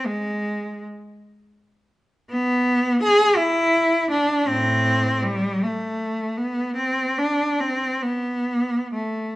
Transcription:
X:1
M:6/8
L:1/8
Q:3/8=53
K:Ab
V:1 name="Cello"
A,2 z4 | [K:Am] B,2 ^G E2 D | [A,,C]2 G, A,2 B, | C D C B,2 A, |]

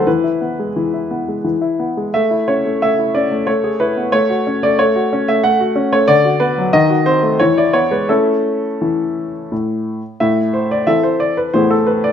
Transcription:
X:1
M:3/4
L:1/16
Q:1/4=90
K:A
V:1 name="Grand piano"
B8- B2 z2 | e2 c2 e2 d2 c2 B2 | c3 d c3 e f3 c | d2 B2 ^d2 ^B2 c =d c =B |
A8 z4 | [K:Am] e2 c d e c d B c A B d |]
V:2 name="Grand piano"
E, E B, G, E, E B, G, E, E B, G, | A, E C A, A, E C A, A, G E B, | A, F C A, A, F C A, A, F C A, | D, F B, F, ^D, F ^B, A, E, E =B, G, |
[A,CE]4 E,4 A,,4 | [K:Am] A,,4 [E,CA]4 [A,,E,B,^G]4 |]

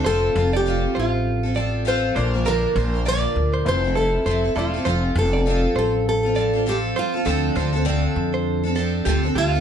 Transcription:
X:1
M:4/4
L:1/16
Q:"Swing 16ths" 1/4=100
K:F
V:1 name="Clean electric guitar"
c z2 d2 z c z3 d2 z2 c z | B2 c2 d z2 c2 z A z c z A z | c z2 d2 z c z3 d2 z2 c z | A2 c2 d z2 c2 z A z G z G z |]
V:2 name="Nylon-string guitar"
A3 G3 F4 z2 c4 | B4 d4 c2 A4 F2- | F2 A4 A2 A4 G2 F2- | F12- F2 F2 |]
V:3 name="Grand piano"
[A,CFc]8 z6 [B,DFd]2- | [B,DFd]6 z2 [A,EFc]6 [A,EFd]2 | z16 | z16 |]
V:4 name="Steel-string acoustic guitar"
[F,CFA]2 [F,CFA] [CFA] [F,CFA]4- [F,CFA] [CFA] [F,CFA]2 [F,CFA]2 [F,B,DB] [F,B,DB] | [B,,D,F,B,DB]2 [F,B,DB] [F,B,DB] [B,,D,F,B,DB]4 [F,CEA] [CEA] [F,CEA]2 [F,CEA] [CEA] [F,CEA] [CEA] | [F,CFA]2 [F,CFA] [CFA] [F,CFA]4- [F,CFA] [CFA] [F,CFA] [CFA] [F,CFA]2 [F,CFA] [CFA] | [D,F,CDA]2 [F,CDA] [CDA] [D,F,CDA]4- [D,F,CDA] [CDA] [F,CDA]2 [D,F,CDA] [CDA] [F,CDA] [CDA] |]
V:5 name="Upright bass" clef=bass
F,,,2 F,,,4 A,,,8 B,,,2- | B,,,2 B,,,4 D,,2 F,,,4 F,,,2 E,,,2 | F,,,2 F,,,4 A,,,8 z2 | D,,2 D,,4 F,,6 D,,2 D,,2 |]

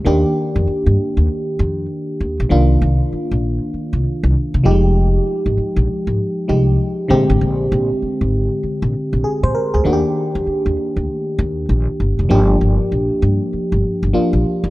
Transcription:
X:1
M:4/4
L:1/16
Q:"Swing 16ths" 1/4=98
K:Eb
V:1 name="FM electric piano"
z16 | z16 | z16 | z12 A c B A- |
A z12 z3 | z16 |]
V:2 name="FM electric piano"
[E,B,DG]16 | [E,B,DF]12- [E,B,DF]2 [F,G,A,EG]2- | [F,G,A,EG]8- [F,G,A,EG]2 [F,A,EG]4 [D,A,CG]2- | [D,A,CG]12- [D,A,CG]2 z2 |
[E,B,D_G=G]16 | [F,B,DG]12 [F,B,DF]4 |]
V:3 name="Upright bass" clef=bass
E,, z2 F,, z G,, z E,, z2 F,,2 z2 E,, B,,, | C,,2 C,, z2 B,,,2 z2 C,, z C,, z C, F,,,2- | F,,,2 z A,,, z B,,, z A,,, z2 C,,2 z2 B,,, A,,, | B,,,2 B,,, z2 A,,,2 z2 B,,, z B,,, z B,, z D,, |
E,, z2 F,, z E,, z D,, z2 E,,2 B,,, z G,,, F,,, | G,,,2 G,,, z B,,, z G,, z2 G,,, z G,,, z B,,, z D,, |]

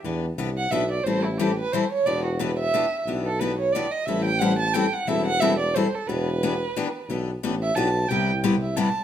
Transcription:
X:1
M:3/4
L:1/16
Q:"Swing" 1/4=179
K:Em
V:1 name="Violin"
z6 f2 e2 d2 | c2 E2 G2 B2 c2 ^c2 | d2 F2 B2 e6 | z2 A2 B2 ^c2 d2 ^d2 |
e2 g2 f2 a2 g2 f2 | e2 f2 e2 d2 c2 A2 | B12 | z6 e2 a4 |
g2 z4 e2 a4 |]
V:2 name="Steel-string acoustic guitar"
[E,B,DG]2 z2 [E,B,DG] z3 [E,B,DG] z3 | [E,G,CEA]2 z2 [E,G,CEA] z3 [E,G,CEA] z3 | [E,B,DG]2 z2 [E,B,DG] z3 [E,B,DG] z3 | [E,B,DG]2 z2 [E,B,DG] z3 [E,B,DG] z3 |
[E,G,CEA]2 z2 [E,G,CEA] z3 [E,G,CEA] z3 | [E,G,CEA]2 z2 [E,G,CEA] z3 [E,G,CEA] z3 | [E,B,DG]2 z2 [E,B,DG] z3 [E,B,DG] z3 | [E,B,DG]2 z2 [E,B,DG] z3 [E,B,DG] z3 |
[C,G,B,EG]2 z2 [C,G,B,EG] z3 [C,G,B,EG] z3 |]
V:3 name="Tuba" clef=bass
E,,4 C,,4 B,,,4 | A,,,8 z4 | E,,,12 | B,,,12 |
A,,,12 | E,,,12 | E,,,8 z4 | B,,,4 A,,,4 B,,,4 |
C,,12 |]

